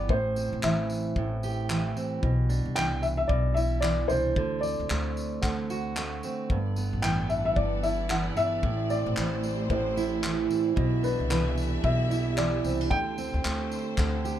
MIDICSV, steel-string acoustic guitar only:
0, 0, Header, 1, 2, 480
1, 0, Start_track
1, 0, Key_signature, 1, "major"
1, 0, Tempo, 534283
1, 84, Time_signature, 4, 2, 24, 8
1, 12932, End_track
2, 0, Start_track
2, 0, Title_t, "Steel-string acoustic guitar"
2, 0, Program_c, 0, 25
2, 0, Note_on_c, 0, 52, 69
2, 0, Note_on_c, 0, 59, 61
2, 0, Note_on_c, 0, 67, 69
2, 80, Note_on_c, 0, 45, 91
2, 142, Note_off_c, 0, 59, 0
2, 329, Note_on_c, 0, 60, 57
2, 562, Note_off_c, 0, 52, 0
2, 566, Note_on_c, 0, 52, 68
2, 1041, Note_off_c, 0, 45, 0
2, 1053, Note_on_c, 0, 45, 74
2, 1080, Note_off_c, 0, 67, 0
2, 1291, Note_on_c, 0, 67, 69
2, 1521, Note_off_c, 0, 52, 0
2, 1524, Note_on_c, 0, 52, 68
2, 1753, Note_off_c, 0, 60, 0
2, 1764, Note_on_c, 0, 60, 64
2, 1997, Note_off_c, 0, 45, 0
2, 2000, Note_on_c, 0, 47, 84
2, 2060, Note_off_c, 0, 60, 0
2, 2239, Note_on_c, 0, 62, 59
2, 2266, Note_off_c, 0, 52, 0
2, 2485, Note_on_c, 0, 52, 71
2, 2949, Note_off_c, 0, 47, 0
2, 2960, Note_on_c, 0, 47, 78
2, 3198, Note_off_c, 0, 67, 0
2, 3202, Note_on_c, 0, 64, 74
2, 3427, Note_off_c, 0, 52, 0
2, 3438, Note_on_c, 0, 52, 71
2, 3685, Note_off_c, 0, 62, 0
2, 3688, Note_on_c, 0, 62, 61
2, 3919, Note_off_c, 0, 52, 0
2, 3924, Note_on_c, 0, 50, 89
2, 3977, Note_off_c, 0, 47, 0
2, 3978, Note_off_c, 0, 64, 0
2, 4162, Note_off_c, 0, 62, 0
2, 4166, Note_on_c, 0, 60, 55
2, 4408, Note_on_c, 0, 57, 74
2, 4875, Note_off_c, 0, 50, 0
2, 4879, Note_on_c, 0, 50, 73
2, 5123, Note_on_c, 0, 66, 69
2, 5356, Note_off_c, 0, 57, 0
2, 5367, Note_on_c, 0, 57, 64
2, 5595, Note_off_c, 0, 60, 0
2, 5606, Note_on_c, 0, 60, 60
2, 5846, Note_on_c, 0, 43, 83
2, 5898, Note_off_c, 0, 66, 0
2, 5900, Note_off_c, 0, 57, 0
2, 5900, Note_off_c, 0, 60, 0
2, 6086, Note_on_c, 0, 59, 64
2, 6313, Note_off_c, 0, 50, 0
2, 6317, Note_on_c, 0, 52, 70
2, 6790, Note_off_c, 0, 43, 0
2, 6800, Note_on_c, 0, 43, 75
2, 7041, Note_on_c, 0, 64, 67
2, 7274, Note_off_c, 0, 52, 0
2, 7278, Note_on_c, 0, 52, 71
2, 7505, Note_off_c, 0, 59, 0
2, 7516, Note_on_c, 0, 59, 59
2, 7754, Note_on_c, 0, 45, 89
2, 7759, Note_off_c, 0, 43, 0
2, 7814, Note_off_c, 0, 59, 0
2, 7999, Note_on_c, 0, 60, 57
2, 8232, Note_off_c, 0, 52, 0
2, 8235, Note_on_c, 0, 52, 68
2, 8711, Note_off_c, 0, 45, 0
2, 8722, Note_on_c, 0, 45, 76
2, 8955, Note_off_c, 0, 64, 0
2, 8958, Note_on_c, 0, 64, 70
2, 9194, Note_off_c, 0, 52, 0
2, 9197, Note_on_c, 0, 52, 75
2, 9425, Note_off_c, 0, 60, 0
2, 9436, Note_on_c, 0, 60, 62
2, 9664, Note_off_c, 0, 45, 0
2, 9667, Note_on_c, 0, 47, 93
2, 9734, Note_off_c, 0, 60, 0
2, 9911, Note_on_c, 0, 62, 60
2, 9938, Note_off_c, 0, 52, 0
2, 9938, Note_off_c, 0, 64, 0
2, 10154, Note_on_c, 0, 52, 71
2, 10620, Note_off_c, 0, 47, 0
2, 10631, Note_on_c, 0, 47, 83
2, 10871, Note_on_c, 0, 64, 76
2, 11108, Note_off_c, 0, 52, 0
2, 11119, Note_on_c, 0, 52, 73
2, 11360, Note_off_c, 0, 62, 0
2, 11364, Note_on_c, 0, 60, 66
2, 11507, Note_off_c, 0, 60, 0
2, 11507, Note_on_c, 0, 62, 55
2, 11598, Note_off_c, 0, 52, 0
2, 11607, Note_on_c, 0, 50, 81
2, 11652, Note_off_c, 0, 47, 0
2, 11652, Note_off_c, 0, 64, 0
2, 11658, Note_off_c, 0, 62, 0
2, 11842, Note_on_c, 0, 60, 64
2, 12082, Note_on_c, 0, 57, 65
2, 12560, Note_off_c, 0, 50, 0
2, 12564, Note_on_c, 0, 50, 80
2, 12798, Note_on_c, 0, 67, 71
2, 12932, Note_off_c, 0, 50, 0
2, 12932, Note_off_c, 0, 57, 0
2, 12932, Note_off_c, 0, 60, 0
2, 12932, Note_off_c, 0, 67, 0
2, 12932, End_track
0, 0, End_of_file